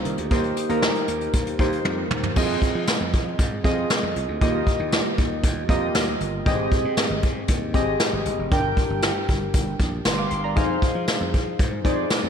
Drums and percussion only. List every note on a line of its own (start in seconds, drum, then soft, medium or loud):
0.05 closed hi-hat medium
0.18 closed hi-hat medium
0.31 kick loud
0.31 closed hi-hat medium
0.44 closed hi-hat soft
0.56 closed hi-hat medium
0.69 closed hi-hat medium
0.82 snare loud
0.95 closed hi-hat medium
1.08 closed hi-hat medium
1.21 closed hi-hat medium
1.33 kick loud
1.33 closed hi-hat loud
1.47 closed hi-hat medium
1.59 kick medium
1.59 closed hi-hat medium
1.72 closed hi-hat soft
1.85 high tom medium
2.11 mid tom medium
2.23 floor tom medium
2.36 kick loud
2.36 crash medium
2.62 kick medium
2.62 closed hi-hat medium
2.88 snare loud
2.88 closed hi-hat medium
2.88 tambourine medium
3.13 kick medium
3.13 closed hi-hat medium
3.39 kick loud
3.39 closed hi-hat loud
3.64 kick loud
3.64 closed hi-hat medium
3.90 snare loud
3.90 closed hi-hat loud
3.90 tambourine medium
4.16 closed hi-hat medium
4.41 kick loud
4.41 closed hi-hat medium
4.67 kick medium
4.67 closed hi-hat medium
4.92 snare loud
4.92 closed hi-hat medium
4.92 tambourine medium
5.18 kick medium
5.18 closed hi-hat medium
5.43 kick loud
5.43 closed hi-hat loud
5.69 kick medium
5.69 closed hi-hat medium
5.95 snare loud
5.95 closed hi-hat loud
5.95 tambourine medium
6.20 closed hi-hat medium
6.46 kick loud
6.46 closed hi-hat medium
6.72 kick loud
6.72 closed hi-hat medium
6.97 snare loud
6.97 closed hi-hat medium
6.97 tambourine medium
7.23 kick medium
7.23 closed hi-hat medium
7.48 kick loud
7.48 closed hi-hat loud
7.74 kick medium
7.74 closed hi-hat medium
8.00 snare loud
8.00 closed hi-hat loud
8.00 tambourine medium
8.25 closed hi-hat medium
8.51 kick loud
8.51 closed hi-hat medium
8.77 kick loud
8.77 closed hi-hat medium
9.02 snare loud
9.02 closed hi-hat medium
9.02 tambourine medium
9.28 kick medium
9.28 closed hi-hat medium
9.54 kick loud
9.54 closed hi-hat loud
9.80 kick medium
9.80 closed hi-hat medium
10.05 snare loud
10.05 closed hi-hat loud
10.05 tambourine medium
10.31 closed hi-hat medium
10.56 kick loud
10.56 closed hi-hat medium
10.82 kick medium
10.82 closed hi-hat medium
11.08 snare loud
11.08 closed hi-hat medium
11.08 tambourine medium
11.34 kick medium
11.34 closed hi-hat medium
11.59 kick loud
11.59 closed hi-hat loud
11.85 kick medium
11.85 closed hi-hat medium
12.10 snare loud
12.10 closed hi-hat loud
12.10 tambourine medium